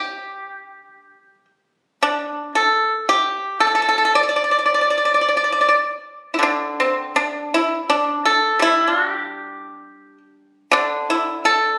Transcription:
0.00 0.95 D3 soft
0.00 1.45 G4 medium
2.03 2.52 D4 medium
2.55 3.05 A4 medium
3.09 3.59 G4 medium
3.60 3.66 A4 medium
3.67 3.74 A4 soft
3.75 3.81 A4 medium
3.82 3.87 A4 soft
3.89 3.97 A4 medium
3.98 4.04 A4 soft
4.05 4.13 A4 medium
4.15 4.22 D5 medium
4.23 4.28 D5 soft
4.29 4.35 D5 medium
4.36 4.43 D5 soft
4.44 4.50 D5 soft
4.51 4.57 D5 soft
4.59 4.64 D5 soft
4.66 4.73 D5 soft
4.74 4.80 D5 soft
4.81 4.89 D5 soft
4.90 4.96 D5 soft
4.98 5.04 D5 soft
5.05 5.13 D5 soft
5.14 5.20 D5 soft
5.21 5.27 D5 soft
5.29 5.36 D5 soft
5.37 5.43 D5 soft
5.44 5.51 D5 soft
5.52 5.59 D5 soft
5.61 5.67 D5 soft
5.68 5.75 D5 soft
6.34 6.38 E4 soft
6.39 9.67 D3 medium
6.43 6.76 D4 medium
6.80 7.13 C4 medium
7.16 7.50 D4 medium
7.54 7.87 E4 medium
7.90 8.23 D4 medium
8.25 8.59 A4 medium
8.59 11.78 G3 medium
8.59 8.86 E4 medium
8.86 10.72 D4 soft
8.86 8.99 F4 medium
8.99 9.11 F#4 medium
9.11 10.18 G4 medium
10.71 11.78 D3 medium
10.71 11.07 D4 medium
11.10 11.43 E4 medium
11.45 11.78 A4 medium

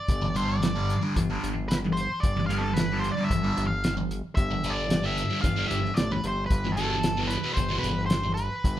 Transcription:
0.00 0.37 D5 loud
0.08 0.96 G1 medium
0.08 kick loud
0.08 closed hi-hat medium
0.21 muted distorted electric guitar stroke medium
0.21 snare soft
0.35 0.52 G2 medium
0.35 0.53 D3 medium
0.35 0.53 G3 medium
0.35 0.49 C5 medium
0.35 closed hi-hat medium
0.49 0.98 D5 medium
0.62 muted distorted electric guitar stroke soft
0.62 snare loud
0.62 closed hi-hat medium
0.75 0.93 G2 medium
0.75 0.93 D3 medium
0.75 0.93 G3 medium
0.90 closed hi-hat medium
1.01 1.15 G2 medium
1.01 1.15 D3 medium
1.01 1.15 G3 medium
1.16 1.38 G1 medium
1.16 muted distorted electric guitar stroke soft
1.16 kick medium
1.16 closed hi-hat loud
1.30 1.47 G2 medium
1.30 1.47 D3 medium
1.30 1.47 G3 loud
1.43 2.09 G1 medium
1.43 closed hi-hat medium
1.68 1.76 B4 medium
1.68 snare loud
1.68 closed hi-hat loud
1.84 muted distorted electric guitar stroke medium
1.93 2.22 C5 medium
1.97 closed hi-hat medium
2.20 2.46 D5 medium
2.20 kick loud
2.20 closed hi-hat medium
2.24 3.11 G1 loud
2.36 muted distorted electric guitar stroke soft
2.36 snare soft
2.47 2.67 G2 medium
2.47 2.67 D3 medium
2.47 2.62 F5 loud
2.47 closed hi-hat medium
2.51 2.67 G3 medium
2.58 2.73 A4 medium
2.73 3.02 B4 medium
2.73 closed hi-hat loud
2.78 muted distorted electric guitar stroke soft
2.78 snare loud
2.92 3.09 G2 medium
2.92 3.08 D3 medium
2.92 3.08 G3 medium
2.99 3.11 C5 medium
3.04 closed hi-hat medium
3.11 3.28 D5 medium
3.17 3.31 G2 medium
3.17 3.30 D3 medium
3.17 3.30 G3 medium
3.24 3.67 E5 loud
3.30 3.52 G1 loud
3.30 muted distorted electric guitar stroke medium
3.30 kick medium
3.30 closed hi-hat loud
3.43 3.61 G2 medium
3.43 3.61 D3 medium
3.43 3.61 G3 loud
3.57 4.22 G1 medium
3.57 closed hi-hat medium
3.67 3.93 F5 medium
3.84 snare loud
3.84 closed hi-hat loud
3.97 muted distorted electric guitar stroke soft
4.11 closed hi-hat medium
4.35 5.24 G1 loud
4.35 4.73 E5 loud
4.35 kick loud
4.35 closed hi-hat medium
4.51 muted distorted electric guitar stroke soft
4.64 4.81 G2 medium
4.64 4.81 D3 medium
4.64 4.82 G3 loud
4.64 closed hi-hat medium
4.70 5.08 D5 medium
4.90 muted distorted electric guitar stroke soft
4.90 snare loud
4.90 closed hi-hat medium
5.04 5.22 G2 medium
5.04 5.21 D3 medium
5.04 5.21 G3 medium
5.04 5.39 E5 medium
5.17 closed hi-hat medium
5.31 5.42 G2 medium
5.31 5.43 D3 medium
5.31 5.42 G3 medium
5.41 5.66 G1 medium
5.41 5.67 F5 loud
5.41 muted distorted electric guitar stroke medium
5.41 kick medium
5.41 closed hi-hat medium
5.56 5.74 G2 medium
5.56 5.74 D3 medium
5.56 5.74 G3 medium
5.68 5.92 G1 medium
5.68 5.96 E5 medium
5.68 closed hi-hat medium
5.85 snare soft
5.94 6.21 A1 medium
5.94 6.12 D5 medium
5.94 snare loud
5.94 closed hi-hat loud
6.12 6.27 B4 medium
6.12 muted distorted electric guitar stroke soft
6.24 6.48 G1 medium
6.24 6.46 C5 medium
6.24 closed hi-hat medium
6.46 6.76 B4 medium
6.50 7.38 G1 loud
6.50 kick loud
6.50 closed hi-hat loud
6.65 muted distorted electric guitar stroke soft
6.65 snare soft
6.72 7.29 A4 medium
6.77 6.94 E2 medium
6.77 6.95 B2 medium
6.77 6.95 E3 medium
6.77 closed hi-hat medium
7.03 muted distorted electric guitar stroke soft
7.03 snare loud
7.03 closed hi-hat loud
7.17 7.35 E2 medium
7.17 7.35 B2 medium
7.17 7.34 E3 medium
7.27 7.53 B4 medium
7.27 closed hi-hat medium
7.44 7.56 E2 medium
7.44 7.56 B2 medium
7.44 7.56 E3 medium
7.54 7.79 G1 medium
7.54 7.79 C5 medium
7.54 muted distorted electric guitar stroke soft
7.54 kick medium
7.54 closed hi-hat medium
7.69 7.88 E2 medium
7.69 7.88 B2 loud
7.69 7.87 E3 medium
7.79 8.06 B4 medium
7.84 8.50 G1 loud
7.84 closed hi-hat medium
8.06 8.33 C5 medium
8.06 closed hi-hat loud
8.11 snare loud
8.23 muted distorted electric guitar stroke soft
8.34 8.79 B4 medium
8.34 closed hi-hat medium
8.64 8.79 G1 loud
8.64 kick loud
8.64 closed hi-hat medium

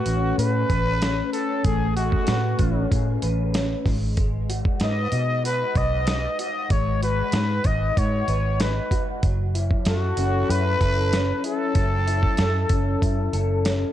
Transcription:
0.00 1.63 A3 medium
0.00 0.35 F#4 medium
0.00 0.37 G#4 medium
0.00 0.69 B4 medium
0.06 0.32 A1 medium
0.06 1.00 C#4 medium
0.06 closed hi-hat medium
0.38 0.63 A2 loud
0.38 1.67 G#4 medium
0.38 1.29 B4 loud
0.38 closed hi-hat loud
0.69 1.20 A1 medium
0.69 2.28 B4 medium
0.69 kick medium
0.69 closed hi-hat medium
1.01 2.59 C#4 medium
1.01 snare loud
1.01 closed hi-hat medium
1.33 1.66 A4 medium
1.33 closed hi-hat medium
1.64 2.15 A1 loud
1.64 3.85 A3 medium
1.64 1.96 G#4 loud
1.64 kick loud
1.64 closed hi-hat medium
1.96 2.87 F#4 medium
1.96 2.91 G#4 medium
1.96 closed hi-hat medium
2.12 kick medium
2.27 2.53 A2 loud
2.27 3.22 B4 medium
2.27 snare loud
2.27 closed hi-hat medium
2.59 2.85 A1 medium
2.59 3.53 C#4 medium
2.59 kick medium
2.59 closed hi-hat medium
2.92 3.17 A2 medium
2.92 4.49 G#4 medium
2.92 kick loud
2.92 closed hi-hat loud
3.22 3.73 A1 medium
3.22 4.81 B4 medium
3.22 closed hi-hat medium
3.54 3.92 C#4 medium
3.54 snare loud
3.54 closed hi-hat medium
3.86 4.62 G#1 medium
3.86 4.16 G#3 medium
3.86 kick medium
3.86 snare soft
3.86 open hi-hat soft
4.17 6.69 G#3 medium
4.17 kick loud
4.17 closed hi-hat medium
4.49 5.43 F#4 medium
4.49 closed hi-hat medium
4.65 kick loud
4.80 5.06 G#2 loud
4.80 5.75 B4 medium
4.80 5.41 D#5 loud
4.80 snare loud
4.80 closed hi-hat medium
5.12 5.63 B2 medium
5.12 6.06 D#4 medium
5.12 closed hi-hat medium
5.44 6.39 F#4 medium
5.44 5.79 B4 loud
5.44 closed hi-hat loud
5.75 6.26 B1 medium
5.75 7.32 B4 medium
5.75 6.40 D#5 loud
5.75 kick medium
5.75 closed hi-hat medium
6.07 7.64 D#4 medium
6.07 snare loud
6.07 closed hi-hat medium
6.39 7.02 F#4 medium
6.39 6.73 D#5 medium
6.39 closed hi-hat medium
6.70 7.21 G#1 loud
6.70 9.22 G#3 medium
6.70 7.03 C#5 loud
6.70 kick loud
6.70 closed hi-hat medium
7.02 7.96 F#4 medium
7.02 7.68 B4 loud
7.02 closed hi-hat medium
7.32 7.58 G#2 loud
7.32 8.27 B4 medium
7.32 snare loud
7.32 closed hi-hat medium
7.64 7.90 G#1 medium
7.64 8.59 D#4 medium
7.64 8.00 D#5 medium
7.64 kick medium
7.64 closed hi-hat medium
7.97 8.22 G#2 medium
7.97 8.91 F#4 medium
7.97 8.63 C#5 loud
7.97 kick loud
7.97 closed hi-hat loud
8.28 8.79 G#1 medium
8.28 9.29 B4 medium
8.28 closed hi-hat medium
8.60 9.29 D#4 medium
8.60 9.08 B4 medium
8.60 snare loud
8.60 closed hi-hat medium
8.91 9.54 F#4 medium
8.91 kick medium
8.91 closed hi-hat medium
9.23 9.73 F#1 medium
9.23 11.75 F#3 medium
9.23 kick loud
9.23 closed hi-hat medium
9.55 10.48 E4 medium
9.55 closed hi-hat medium
9.71 kick medium
9.85 10.11 F#2 medium
9.85 10.52 F#4 loud
9.85 10.80 A4 medium
9.85 snare loud
9.85 closed hi-hat medium
10.17 10.43 F#1 loud
10.17 11.12 C#4 medium
10.17 closed hi-hat medium
10.49 10.74 F#2 medium
10.49 11.43 E4 medium
10.49 11.44 B4 loud
10.49 closed hi-hat loud
10.81 11.31 F#1 medium
10.81 12.38 A4 medium
10.81 kick medium
10.81 closed hi-hat medium
11.13 12.70 C#4 medium
11.13 snare loud
11.13 closed hi-hat loud
11.44 12.06 E4 medium
11.44 13.62 A4 loud
11.44 closed hi-hat medium
11.75 12.26 F#1 loud
11.75 13.92 F#3 medium
11.75 kick loud
11.75 closed hi-hat medium
12.07 13.00 E4 medium
12.07 closed hi-hat medium
12.23 kick loud
12.37 12.64 F#2 loud
12.37 13.33 A4 medium
12.37 snare loud
12.37 closed hi-hat medium
12.69 12.95 F#1 medium
12.69 13.65 C#4 medium
12.69 kick loud
12.69 closed hi-hat medium
13.01 13.27 F#2 medium
13.01 13.92 E4 medium
13.01 kick loud
13.01 closed hi-hat loud
13.33 13.83 F#1 medium
13.33 13.92 A4 medium
13.33 closed hi-hat medium
13.65 13.92 C#4 medium
13.65 snare loud
13.65 closed hi-hat medium

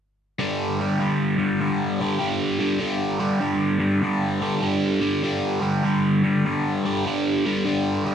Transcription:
0.39 0.80 G2 medium
0.39 0.79 D3 medium
0.39 0.81 G3 medium
0.80 0.99 G2 medium
0.80 0.99 D3 medium
0.80 1.00 G3 medium
0.99 1.37 G2 medium
0.99 1.37 D3 medium
0.99 1.38 G3 medium
1.37 1.59 G2 medium
1.37 1.59 D3 medium
1.37 1.60 G3 medium
1.60 1.99 G2 medium
1.60 1.99 D3 medium
1.60 2.01 G3 medium
2.00 2.19 G2 medium
2.00 2.19 D3 medium
2.00 2.20 G3 medium
2.19 2.59 G2 medium
2.19 2.58 D3 medium
2.19 2.60 G3 medium
2.59 2.80 G2 medium
2.59 2.79 D3 medium
2.59 2.81 G3 medium
2.80 3.19 G2 medium
2.80 3.19 D3 medium
2.80 3.20 G3 medium
3.19 3.40 G2 medium
3.19 3.39 D3 medium
3.19 3.41 G3 medium
3.40 3.78 G2 medium
3.40 3.78 D3 medium
3.40 3.80 G3 medium
3.79 4.02 G2 medium
3.79 4.01 D3 medium
3.79 4.03 G3 medium
4.02 4.41 G2 medium
4.02 4.40 D3 medium
4.02 4.42 G3 medium
4.41 4.61 G2 medium
4.41 4.61 D3 medium
4.41 4.62 G3 medium
4.61 5.00 G2 medium
4.61 5.00 D3 medium
4.61 5.01 G3 medium
5.00 5.22 G2 medium
5.00 5.23 D3 medium
5.00 5.23 G3 medium
5.23 5.59 G2 medium
5.23 5.60 D3 medium
5.23 5.61 G3 medium
5.60 5.82 G2 medium
5.60 5.83 D3 medium
5.60 5.83 G3 medium
5.83 6.22 G2 medium
5.83 6.23 D3 medium
5.83 6.23 G3 medium
6.24 6.44 G2 medium
6.24 6.45 D3 medium
6.24 6.45 G3 medium
6.46 6.84 G2 medium
6.46 6.84 D3 medium
6.46 6.85 G3 medium
6.85 7.04 G2 medium
6.85 7.05 D3 medium
6.85 7.06 G3 medium
7.06 7.45 G2 medium
7.06 7.45 D3 medium
7.06 7.45 G3 medium
7.46 7.64 G2 medium
7.46 7.66 D3 medium
7.46 7.66 G3 medium
7.65 8.04 G2 medium
7.65 8.04 D3 medium
7.65 8.05 G3 medium
8.05 8.15 G2 medium
8.05 8.15 D3 medium
8.05 8.15 G3 medium

